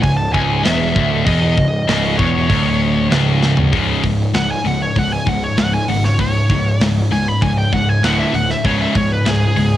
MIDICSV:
0, 0, Header, 1, 5, 480
1, 0, Start_track
1, 0, Tempo, 614754
1, 988, Time_signature, 4, 2, 24, 8
1, 7630, End_track
2, 0, Start_track
2, 0, Title_t, "Lead electric guitar"
2, 0, Program_c, 0, 29
2, 20, Note_on_c, 0, 80, 106
2, 131, Note_off_c, 0, 80, 0
2, 131, Note_on_c, 0, 81, 108
2, 253, Note_off_c, 0, 81, 0
2, 256, Note_on_c, 0, 80, 95
2, 496, Note_on_c, 0, 76, 106
2, 509, Note_off_c, 0, 80, 0
2, 975, Note_off_c, 0, 76, 0
2, 978, Note_on_c, 0, 75, 94
2, 1697, Note_off_c, 0, 75, 0
2, 1700, Note_on_c, 0, 73, 83
2, 2394, Note_off_c, 0, 73, 0
2, 3395, Note_on_c, 0, 78, 109
2, 3509, Note_off_c, 0, 78, 0
2, 3522, Note_on_c, 0, 80, 80
2, 3645, Note_off_c, 0, 80, 0
2, 3645, Note_on_c, 0, 78, 83
2, 3754, Note_off_c, 0, 78, 0
2, 3765, Note_on_c, 0, 73, 82
2, 3874, Note_off_c, 0, 73, 0
2, 3893, Note_on_c, 0, 78, 98
2, 3999, Note_off_c, 0, 78, 0
2, 4005, Note_on_c, 0, 80, 87
2, 4129, Note_off_c, 0, 80, 0
2, 4129, Note_on_c, 0, 78, 78
2, 4237, Note_off_c, 0, 78, 0
2, 4247, Note_on_c, 0, 73, 86
2, 4356, Note_off_c, 0, 73, 0
2, 4371, Note_on_c, 0, 78, 108
2, 4478, Note_off_c, 0, 78, 0
2, 4483, Note_on_c, 0, 80, 82
2, 4594, Note_off_c, 0, 80, 0
2, 4594, Note_on_c, 0, 78, 77
2, 4709, Note_off_c, 0, 78, 0
2, 4721, Note_on_c, 0, 73, 92
2, 4833, Note_off_c, 0, 73, 0
2, 4843, Note_on_c, 0, 73, 102
2, 5304, Note_off_c, 0, 73, 0
2, 5561, Note_on_c, 0, 80, 96
2, 5684, Note_off_c, 0, 80, 0
2, 5684, Note_on_c, 0, 83, 83
2, 5795, Note_off_c, 0, 83, 0
2, 5795, Note_on_c, 0, 80, 89
2, 5910, Note_off_c, 0, 80, 0
2, 5919, Note_on_c, 0, 79, 91
2, 6032, Note_off_c, 0, 79, 0
2, 6038, Note_on_c, 0, 78, 92
2, 6160, Note_off_c, 0, 78, 0
2, 6160, Note_on_c, 0, 80, 81
2, 6277, Note_off_c, 0, 80, 0
2, 6277, Note_on_c, 0, 78, 95
2, 6391, Note_off_c, 0, 78, 0
2, 6394, Note_on_c, 0, 76, 80
2, 6510, Note_off_c, 0, 76, 0
2, 6519, Note_on_c, 0, 78, 94
2, 6632, Note_off_c, 0, 78, 0
2, 6642, Note_on_c, 0, 76, 94
2, 6754, Note_off_c, 0, 76, 0
2, 6761, Note_on_c, 0, 73, 96
2, 6873, Note_off_c, 0, 73, 0
2, 6884, Note_on_c, 0, 76, 91
2, 6995, Note_off_c, 0, 76, 0
2, 7006, Note_on_c, 0, 73, 93
2, 7123, Note_off_c, 0, 73, 0
2, 7123, Note_on_c, 0, 71, 86
2, 7244, Note_off_c, 0, 71, 0
2, 7244, Note_on_c, 0, 68, 101
2, 7630, Note_off_c, 0, 68, 0
2, 7630, End_track
3, 0, Start_track
3, 0, Title_t, "Distorted electric guitar"
3, 0, Program_c, 1, 30
3, 25, Note_on_c, 1, 37, 77
3, 219, Note_off_c, 1, 37, 0
3, 265, Note_on_c, 1, 37, 99
3, 498, Note_off_c, 1, 37, 0
3, 501, Note_on_c, 1, 40, 109
3, 738, Note_off_c, 1, 40, 0
3, 749, Note_on_c, 1, 38, 103
3, 981, Note_off_c, 1, 38, 0
3, 984, Note_on_c, 1, 40, 113
3, 1219, Note_off_c, 1, 40, 0
3, 1230, Note_on_c, 1, 37, 75
3, 1421, Note_off_c, 1, 37, 0
3, 1466, Note_on_c, 1, 37, 107
3, 1700, Note_off_c, 1, 37, 0
3, 1708, Note_on_c, 1, 40, 99
3, 1941, Note_off_c, 1, 40, 0
3, 1945, Note_on_c, 1, 38, 109
3, 2420, Note_off_c, 1, 38, 0
3, 2423, Note_on_c, 1, 37, 106
3, 2894, Note_off_c, 1, 37, 0
3, 2903, Note_on_c, 1, 37, 96
3, 2910, Note_on_c, 1, 44, 101
3, 2915, Note_on_c, 1, 49, 104
3, 3132, Note_off_c, 1, 37, 0
3, 3136, Note_off_c, 1, 44, 0
3, 3138, Note_off_c, 1, 49, 0
3, 3145, Note_on_c, 1, 37, 66
3, 3151, Note_on_c, 1, 44, 84
3, 3364, Note_off_c, 1, 37, 0
3, 3367, Note_off_c, 1, 44, 0
3, 3387, Note_on_c, 1, 37, 70
3, 3391, Note_on_c, 1, 44, 89
3, 3605, Note_off_c, 1, 37, 0
3, 3607, Note_off_c, 1, 44, 0
3, 3625, Note_on_c, 1, 37, 69
3, 3634, Note_on_c, 1, 44, 86
3, 3844, Note_off_c, 1, 37, 0
3, 3848, Note_off_c, 1, 44, 0
3, 3870, Note_on_c, 1, 37, 79
3, 3873, Note_on_c, 1, 44, 79
3, 4087, Note_off_c, 1, 37, 0
3, 4088, Note_off_c, 1, 44, 0
3, 4108, Note_on_c, 1, 37, 73
3, 4114, Note_on_c, 1, 44, 75
3, 4326, Note_off_c, 1, 37, 0
3, 4329, Note_off_c, 1, 44, 0
3, 4352, Note_on_c, 1, 37, 74
3, 4356, Note_on_c, 1, 44, 74
3, 4568, Note_off_c, 1, 37, 0
3, 4570, Note_off_c, 1, 44, 0
3, 4602, Note_on_c, 1, 37, 72
3, 4603, Note_on_c, 1, 44, 75
3, 4813, Note_off_c, 1, 37, 0
3, 4813, Note_off_c, 1, 44, 0
3, 4835, Note_on_c, 1, 37, 80
3, 4839, Note_on_c, 1, 44, 88
3, 5049, Note_off_c, 1, 37, 0
3, 5052, Note_off_c, 1, 44, 0
3, 5080, Note_on_c, 1, 37, 77
3, 5082, Note_on_c, 1, 44, 80
3, 5292, Note_off_c, 1, 37, 0
3, 5293, Note_off_c, 1, 44, 0
3, 5323, Note_on_c, 1, 37, 78
3, 5323, Note_on_c, 1, 44, 90
3, 5534, Note_off_c, 1, 37, 0
3, 5534, Note_off_c, 1, 44, 0
3, 5550, Note_on_c, 1, 37, 74
3, 5554, Note_on_c, 1, 44, 81
3, 5767, Note_off_c, 1, 37, 0
3, 5769, Note_off_c, 1, 44, 0
3, 5796, Note_on_c, 1, 44, 93
3, 5797, Note_on_c, 1, 37, 79
3, 6010, Note_off_c, 1, 44, 0
3, 6011, Note_off_c, 1, 37, 0
3, 6029, Note_on_c, 1, 37, 70
3, 6033, Note_on_c, 1, 44, 80
3, 6247, Note_off_c, 1, 37, 0
3, 6249, Note_off_c, 1, 44, 0
3, 6276, Note_on_c, 1, 38, 89
3, 6280, Note_on_c, 1, 45, 96
3, 6288, Note_on_c, 1, 50, 102
3, 6500, Note_off_c, 1, 38, 0
3, 6502, Note_off_c, 1, 45, 0
3, 6506, Note_off_c, 1, 50, 0
3, 6515, Note_on_c, 1, 38, 73
3, 6516, Note_on_c, 1, 45, 78
3, 6730, Note_off_c, 1, 38, 0
3, 6730, Note_off_c, 1, 45, 0
3, 6751, Note_on_c, 1, 37, 93
3, 6757, Note_on_c, 1, 44, 101
3, 6762, Note_on_c, 1, 49, 96
3, 6977, Note_off_c, 1, 37, 0
3, 6980, Note_off_c, 1, 44, 0
3, 6983, Note_off_c, 1, 49, 0
3, 6989, Note_on_c, 1, 37, 76
3, 6990, Note_on_c, 1, 44, 88
3, 7207, Note_off_c, 1, 37, 0
3, 7207, Note_off_c, 1, 44, 0
3, 7223, Note_on_c, 1, 37, 83
3, 7228, Note_on_c, 1, 44, 93
3, 7444, Note_off_c, 1, 37, 0
3, 7446, Note_off_c, 1, 44, 0
3, 7464, Note_on_c, 1, 37, 72
3, 7471, Note_on_c, 1, 44, 85
3, 7630, Note_off_c, 1, 37, 0
3, 7630, Note_off_c, 1, 44, 0
3, 7630, End_track
4, 0, Start_track
4, 0, Title_t, "Picked electric bass"
4, 0, Program_c, 2, 34
4, 28, Note_on_c, 2, 25, 76
4, 251, Note_off_c, 2, 25, 0
4, 268, Note_on_c, 2, 25, 104
4, 491, Note_off_c, 2, 25, 0
4, 512, Note_on_c, 2, 28, 96
4, 734, Note_off_c, 2, 28, 0
4, 748, Note_on_c, 2, 26, 102
4, 971, Note_off_c, 2, 26, 0
4, 986, Note_on_c, 2, 28, 93
4, 1211, Note_off_c, 2, 28, 0
4, 1229, Note_on_c, 2, 25, 82
4, 1452, Note_off_c, 2, 25, 0
4, 1470, Note_on_c, 2, 25, 99
4, 1692, Note_off_c, 2, 25, 0
4, 1710, Note_on_c, 2, 28, 98
4, 1933, Note_off_c, 2, 28, 0
4, 1949, Note_on_c, 2, 26, 92
4, 2398, Note_off_c, 2, 26, 0
4, 2435, Note_on_c, 2, 25, 91
4, 2881, Note_off_c, 2, 25, 0
4, 2912, Note_on_c, 2, 25, 88
4, 3066, Note_off_c, 2, 25, 0
4, 3152, Note_on_c, 2, 25, 90
4, 3306, Note_off_c, 2, 25, 0
4, 3387, Note_on_c, 2, 25, 85
4, 3543, Note_off_c, 2, 25, 0
4, 3635, Note_on_c, 2, 25, 84
4, 3789, Note_off_c, 2, 25, 0
4, 3873, Note_on_c, 2, 25, 84
4, 4027, Note_off_c, 2, 25, 0
4, 4117, Note_on_c, 2, 25, 90
4, 4270, Note_off_c, 2, 25, 0
4, 4357, Note_on_c, 2, 25, 93
4, 4510, Note_off_c, 2, 25, 0
4, 4593, Note_on_c, 2, 32, 92
4, 4747, Note_off_c, 2, 32, 0
4, 4833, Note_on_c, 2, 25, 98
4, 4987, Note_off_c, 2, 25, 0
4, 5072, Note_on_c, 2, 25, 90
4, 5227, Note_off_c, 2, 25, 0
4, 5313, Note_on_c, 2, 25, 86
4, 5467, Note_off_c, 2, 25, 0
4, 5549, Note_on_c, 2, 25, 93
4, 5705, Note_off_c, 2, 25, 0
4, 5793, Note_on_c, 2, 25, 90
4, 5948, Note_off_c, 2, 25, 0
4, 6033, Note_on_c, 2, 25, 88
4, 6188, Note_off_c, 2, 25, 0
4, 6269, Note_on_c, 2, 26, 91
4, 6425, Note_off_c, 2, 26, 0
4, 6510, Note_on_c, 2, 26, 94
4, 6665, Note_off_c, 2, 26, 0
4, 6754, Note_on_c, 2, 25, 94
4, 6908, Note_off_c, 2, 25, 0
4, 6994, Note_on_c, 2, 25, 92
4, 7148, Note_off_c, 2, 25, 0
4, 7228, Note_on_c, 2, 25, 92
4, 7384, Note_off_c, 2, 25, 0
4, 7470, Note_on_c, 2, 25, 90
4, 7625, Note_off_c, 2, 25, 0
4, 7630, End_track
5, 0, Start_track
5, 0, Title_t, "Drums"
5, 26, Note_on_c, 9, 46, 62
5, 28, Note_on_c, 9, 36, 88
5, 104, Note_off_c, 9, 46, 0
5, 106, Note_off_c, 9, 36, 0
5, 269, Note_on_c, 9, 36, 100
5, 347, Note_off_c, 9, 36, 0
5, 507, Note_on_c, 9, 46, 69
5, 513, Note_on_c, 9, 38, 117
5, 585, Note_off_c, 9, 46, 0
5, 591, Note_off_c, 9, 38, 0
5, 749, Note_on_c, 9, 36, 116
5, 827, Note_off_c, 9, 36, 0
5, 988, Note_on_c, 9, 36, 106
5, 988, Note_on_c, 9, 46, 60
5, 1066, Note_off_c, 9, 36, 0
5, 1066, Note_off_c, 9, 46, 0
5, 1230, Note_on_c, 9, 36, 92
5, 1308, Note_off_c, 9, 36, 0
5, 1469, Note_on_c, 9, 46, 70
5, 1475, Note_on_c, 9, 38, 109
5, 1548, Note_off_c, 9, 46, 0
5, 1553, Note_off_c, 9, 38, 0
5, 1710, Note_on_c, 9, 36, 104
5, 1789, Note_off_c, 9, 36, 0
5, 1949, Note_on_c, 9, 46, 57
5, 1950, Note_on_c, 9, 36, 108
5, 2027, Note_off_c, 9, 46, 0
5, 2028, Note_off_c, 9, 36, 0
5, 2431, Note_on_c, 9, 46, 62
5, 2436, Note_on_c, 9, 38, 110
5, 2509, Note_off_c, 9, 46, 0
5, 2514, Note_off_c, 9, 38, 0
5, 2674, Note_on_c, 9, 38, 68
5, 2752, Note_off_c, 9, 38, 0
5, 2787, Note_on_c, 9, 43, 91
5, 2865, Note_off_c, 9, 43, 0
5, 2909, Note_on_c, 9, 46, 71
5, 2911, Note_on_c, 9, 36, 104
5, 2987, Note_off_c, 9, 46, 0
5, 2989, Note_off_c, 9, 36, 0
5, 3150, Note_on_c, 9, 46, 63
5, 3151, Note_on_c, 9, 36, 88
5, 3228, Note_off_c, 9, 46, 0
5, 3229, Note_off_c, 9, 36, 0
5, 3389, Note_on_c, 9, 46, 88
5, 3395, Note_on_c, 9, 38, 117
5, 3467, Note_off_c, 9, 46, 0
5, 3473, Note_off_c, 9, 38, 0
5, 3630, Note_on_c, 9, 46, 60
5, 3708, Note_off_c, 9, 46, 0
5, 3873, Note_on_c, 9, 36, 80
5, 3876, Note_on_c, 9, 46, 83
5, 3951, Note_off_c, 9, 36, 0
5, 3954, Note_off_c, 9, 46, 0
5, 4114, Note_on_c, 9, 36, 87
5, 4117, Note_on_c, 9, 46, 64
5, 4192, Note_off_c, 9, 36, 0
5, 4195, Note_off_c, 9, 46, 0
5, 4352, Note_on_c, 9, 46, 86
5, 4357, Note_on_c, 9, 38, 117
5, 4430, Note_off_c, 9, 46, 0
5, 4435, Note_off_c, 9, 38, 0
5, 4591, Note_on_c, 9, 46, 72
5, 4669, Note_off_c, 9, 46, 0
5, 4720, Note_on_c, 9, 38, 34
5, 4798, Note_off_c, 9, 38, 0
5, 4831, Note_on_c, 9, 46, 85
5, 4833, Note_on_c, 9, 36, 109
5, 4909, Note_off_c, 9, 46, 0
5, 4911, Note_off_c, 9, 36, 0
5, 5073, Note_on_c, 9, 36, 91
5, 5073, Note_on_c, 9, 46, 66
5, 5151, Note_off_c, 9, 36, 0
5, 5151, Note_off_c, 9, 46, 0
5, 5315, Note_on_c, 9, 46, 86
5, 5320, Note_on_c, 9, 38, 115
5, 5393, Note_off_c, 9, 46, 0
5, 5398, Note_off_c, 9, 38, 0
5, 5556, Note_on_c, 9, 46, 61
5, 5634, Note_off_c, 9, 46, 0
5, 5793, Note_on_c, 9, 46, 76
5, 5794, Note_on_c, 9, 36, 86
5, 5871, Note_off_c, 9, 46, 0
5, 5872, Note_off_c, 9, 36, 0
5, 6031, Note_on_c, 9, 46, 57
5, 6033, Note_on_c, 9, 36, 83
5, 6109, Note_off_c, 9, 46, 0
5, 6111, Note_off_c, 9, 36, 0
5, 6273, Note_on_c, 9, 46, 76
5, 6278, Note_on_c, 9, 38, 110
5, 6351, Note_off_c, 9, 46, 0
5, 6356, Note_off_c, 9, 38, 0
5, 6516, Note_on_c, 9, 46, 59
5, 6594, Note_off_c, 9, 46, 0
5, 6637, Note_on_c, 9, 38, 34
5, 6715, Note_off_c, 9, 38, 0
5, 6750, Note_on_c, 9, 46, 79
5, 6752, Note_on_c, 9, 36, 109
5, 6828, Note_off_c, 9, 46, 0
5, 6830, Note_off_c, 9, 36, 0
5, 6988, Note_on_c, 9, 46, 61
5, 6991, Note_on_c, 9, 36, 95
5, 7066, Note_off_c, 9, 46, 0
5, 7069, Note_off_c, 9, 36, 0
5, 7228, Note_on_c, 9, 46, 84
5, 7233, Note_on_c, 9, 38, 114
5, 7306, Note_off_c, 9, 46, 0
5, 7311, Note_off_c, 9, 38, 0
5, 7472, Note_on_c, 9, 46, 59
5, 7550, Note_off_c, 9, 46, 0
5, 7630, End_track
0, 0, End_of_file